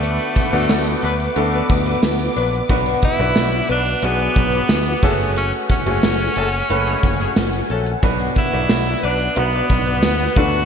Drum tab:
HH |xxxx-xxxxxxx-xox|xxxx-xxxxxxx-xox|xxxx-xxxxxxx-xox|xxxx-xxxxxxx-xox|
TB |----x-------x---|----x-------x---|----x-------x---|----x-------x---|
SD |----o-------o---|----o-------o---|----o-------o---|----o-------o---|
BD |--o-------o-----|o-o-------o---o-|--o-------o-----|o-o-------o---o-|